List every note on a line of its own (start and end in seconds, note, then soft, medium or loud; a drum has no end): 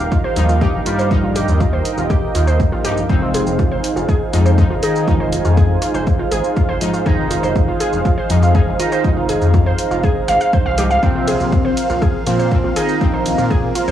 0.00 0.34 G2 medium
0.00 0.34 F3 medium
0.00 0.34 D#4 loud
0.00 4.54 D#4 medium
0.00 10.99 D#4 medium
0.00 3.05 G4 medium
0.00 3.05 A#4 medium
0.00 4.96 A#4 medium
0.00 1.07 F5 medium
0.00 3.98 F5 medium
0.12 0.16 F4 medium
0.12 kick loud
0.12 shaker soft
0.24 0.31 C5 medium
0.36 0.68 D#2 medium
0.36 0.58 G2 medium
0.36 0.58 F3 medium
0.36 0.58 D#4 medium
0.36 open hi-hat loud
0.36 shaker medium
0.49 0.53 F4 medium
0.49 shaker soft
0.61 0.81 G2 medium
0.61 0.81 F3 medium
0.61 0.81 D#4 loud
0.61 0.68 G4 loud
0.61 kick loud
0.61 shaker soft
0.74 0.83 D#1 loud
0.86 1.51 G2 medium
0.86 1.51 G3 loud
0.86 0.90 F4 medium
0.86 open hi-hat loud
0.86 shaker medium
0.91 3.09 G5 medium
0.99 1.05 C5 medium
0.99 shaker soft
1.11 1.42 D#1 medium
1.11 2.82 G2 medium
1.11 2.82 F3 medium
1.11 2.82 D#4 loud
1.11 3.07 D#5 medium
1.11 kick loud
1.11 shaker soft
1.24 1.28 F4 medium
1.36 1.43 G4 loud
1.36 open hi-hat loud
1.36 shaker medium
1.48 1.79 D#2 medium
1.48 shaker soft
1.60 1.65 F4 medium
1.60 kick loud
1.60 shaker soft
1.73 1.80 C5 medium
1.85 open hi-hat loud
1.85 shaker medium
1.98 2.29 D#1 loud
1.98 2.02 F4 medium
1.98 shaker soft
2.10 2.17 G4 loud
2.10 kick loud
2.10 shaker soft
2.35 2.66 D#2 loud
2.35 2.39 F4 medium
2.35 open hi-hat loud
2.35 shaker medium
2.47 2.54 C5 medium
2.47 shaker soft
2.60 kick loud
2.60 shaker soft
2.72 3.03 A#1 medium
2.72 2.76 F4 medium
2.84 3.06 G2 medium
2.84 3.06 F3 medium
2.84 3.06 D#4 loud
2.84 2.91 G4 loud
2.84 open hi-hat loud
2.84 shaker medium
2.97 shaker soft
3.09 3.41 F1 loud
3.09 4.30 G#2 medium
3.09 3.74 C3 medium
3.09 4.30 F3 medium
3.09 3.74 C4 loud
3.09 4.30 D#4 loud
3.09 11.75 F4 medium
3.09 10.99 G#4 medium
3.09 10.99 C5 medium
3.09 13.91 F5 medium
3.09 kick loud
3.09 shaker soft
3.22 3.26 F4 medium
3.34 3.41 G#4 loud
3.34 13.91 C5 medium
3.34 open hi-hat loud
3.34 shaker medium
3.47 3.78 F1 medium
3.47 shaker soft
3.59 3.63 F4 medium
3.59 kick loud
3.59 shaker soft
3.71 3.78 C5 medium
3.82 8.30 G#5 medium
3.82 open hi-hat loud
3.82 shaker medium
3.96 4.05 F1 loud
3.96 4.00 F4 medium
3.96 shaker soft
4.09 4.15 G#4 loud
4.09 kick loud
4.09 shaker soft
4.33 4.65 F2 medium
4.33 4.55 G#2 medium
4.33 4.55 F3 medium
4.33 4.55 D#4 medium
4.33 4.37 F4 medium
4.33 open hi-hat loud
4.33 shaker medium
4.46 4.53 C5 medium
4.46 shaker soft
4.58 4.78 G#2 medium
4.58 4.78 F3 medium
4.58 4.78 D#4 loud
4.58 kick loud
4.58 shaker soft
4.71 4.79 F1 loud
4.71 4.75 F4 medium
4.83 5.47 D#3 medium
4.83 5.47 D#4 loud
4.83 4.90 G#4 loud
4.83 open hi-hat loud
4.83 shaker medium
4.96 shaker medium
5.08 5.39 F1 medium
5.08 6.78 G#2 medium
5.08 6.78 F3 medium
5.08 6.78 D#4 loud
5.08 5.12 F4 medium
5.08 kick loud
5.08 shaker soft
5.20 5.27 C5 medium
5.33 open hi-hat loud
5.33 shaker medium
5.45 5.76 F2 medium
5.45 5.49 F4 medium
5.45 shaker soft
5.57 5.64 G#4 loud
5.57 kick loud
5.57 shaker soft
5.82 5.86 F4 medium
5.82 open hi-hat loud
5.82 shaker medium
5.94 6.26 F1 loud
5.94 6.01 C5 medium
5.94 shaker soft
6.07 kick loud
6.07 shaker soft
6.19 6.23 F4 medium
6.31 6.40 G#1 loud
6.31 6.38 G#4 loud
6.31 open hi-hat loud
6.31 shaker medium
6.44 shaker soft
6.56 6.61 F4 medium
6.56 kick loud
6.56 shaker soft
6.69 6.77 F1 medium
6.69 6.76 C5 medium
6.81 7.03 G#2 medium
6.81 7.03 F3 medium
6.81 7.03 D#4 loud
6.81 open hi-hat loud
6.81 shaker medium
6.94 6.98 F4 medium
6.94 shaker medium
7.06 7.37 F1 loud
7.06 8.27 G#2 medium
7.06 7.71 D#3 medium
7.06 8.27 F3 medium
7.06 7.71 D#4 loud
7.06 8.27 D#4 loud
7.06 7.13 G#4 loud
7.06 kick loud
7.06 shaker soft
7.31 7.35 F4 medium
7.31 open hi-hat loud
7.31 shaker medium
7.43 7.74 F1 medium
7.43 7.50 C5 medium
7.43 shaker soft
7.56 kick loud
7.56 shaker soft
7.68 7.72 F4 medium
7.80 7.87 G#4 loud
7.80 open hi-hat loud
7.80 shaker medium
7.93 8.01 F1 loud
7.93 shaker soft
8.05 8.09 F4 medium
8.05 kick loud
8.05 shaker soft
8.15 8.25 C5 medium
8.15 12.62 A#5 medium
8.30 8.61 F2 medium
8.30 8.52 G#2 medium
8.30 8.52 F3 medium
8.30 8.52 D#4 medium
8.30 open hi-hat loud
8.30 shaker medium
8.42 8.47 F4 medium
8.42 shaker soft
8.55 8.74 G#2 medium
8.55 8.74 F3 medium
8.55 8.74 D#4 loud
8.55 8.62 G#4 loud
8.55 kick loud
8.55 shaker soft
8.67 8.76 F1 loud
8.79 9.44 D#3 medium
8.79 9.44 D#4 loud
8.79 8.84 F4 medium
8.79 open hi-hat loud
8.79 shaker medium
8.92 8.99 C5 medium
8.92 shaker medium
9.04 9.36 F1 medium
9.04 10.75 G#2 medium
9.04 10.75 F3 medium
9.04 10.75 D#4 loud
9.04 kick loud
9.04 shaker soft
9.17 9.21 F4 medium
9.29 9.36 G#4 loud
9.29 open hi-hat loud
9.29 shaker medium
9.42 9.73 F2 medium
9.42 shaker soft
9.54 9.58 F4 medium
9.54 kick loud
9.54 shaker soft
9.66 9.73 C5 medium
9.79 open hi-hat loud
9.79 shaker medium
9.91 10.22 F1 loud
9.91 9.95 F4 medium
9.91 shaker soft
10.03 10.10 G#4 loud
10.03 kick loud
10.03 shaker soft
10.28 10.37 G#1 loud
10.28 10.35 F5 loud
10.28 open hi-hat loud
10.28 shaker medium
10.41 10.51 F5 medium
10.41 shaker soft
10.53 10.60 C5 medium
10.53 kick loud
10.53 shaker soft
10.66 10.97 C2 medium
10.66 10.76 F5 loud
10.78 11.00 G#2 medium
10.78 11.00 F3 medium
10.78 11.00 D#4 loud
10.78 10.85 G4 loud
10.78 open hi-hat loud
10.78 shaker medium
10.90 10.97 F5 loud
10.90 shaker soft
11.02 11.34 A#1 loud
11.02 12.24 A#2 medium
11.02 11.67 C3 medium
11.02 12.24 F3 medium
11.02 13.91 C4 medium
11.02 11.67 C4 loud
11.02 12.24 C4 loud
11.02 13.91 F4 medium
11.02 13.91 A#4 medium
11.02 kick loud
11.02 shaker soft
11.15 11.19 F4 medium
11.27 11.34 G#4 loud
11.27 open hi-hat loud
11.27 ride medium
11.27 shaker medium
11.40 11.71 A#1 medium
11.40 shaker soft
11.52 11.56 F4 medium
11.52 kick loud
11.52 shaker soft
11.65 11.72 C5 medium
11.69 13.91 F5 medium
11.77 open hi-hat loud
11.77 ride medium
11.77 shaker medium
11.89 11.98 A#1 loud
11.89 11.94 F4 medium
11.89 shaker soft
12.02 12.09 G#4 loud
12.02 kick loud
12.02 shaker soft
12.27 12.58 A#2 medium
12.27 12.49 A#2 medium
12.27 12.49 F3 medium
12.27 12.49 C4 loud
12.27 12.31 F4 medium
12.27 open hi-hat loud
12.27 ride medium
12.27 shaker medium
12.39 12.46 C5 medium
12.39 shaker soft
12.51 12.71 A#2 medium
12.51 12.71 F3 medium
12.51 12.71 C4 loud
12.51 kick loud
12.51 shaker soft
12.64 12.73 A#1 loud
12.64 12.68 F4 medium
12.76 13.41 D#3 medium
12.76 13.41 D#4 loud
12.76 12.83 G#4 loud
12.76 open hi-hat loud
12.76 ride medium
12.76 shaker medium
12.89 shaker soft
13.01 13.32 A#1 medium
13.01 13.91 A#2 medium
13.01 13.91 F3 medium
13.01 13.91 C4 loud
13.01 13.05 F4 medium
13.01 kick loud
13.01 shaker soft
13.13 13.20 C5 medium
13.26 open hi-hat loud
13.26 ride medium
13.26 shaker medium
13.38 13.70 A#2 medium
13.38 13.42 F4 medium
13.38 shaker soft
13.50 13.57 G#4 loud
13.50 kick loud
13.50 shaker soft
13.75 13.80 F4 medium
13.75 open hi-hat loud
13.75 ride medium
13.75 shaker medium
13.88 13.91 A#1 loud
13.88 13.91 C5 medium
13.88 shaker soft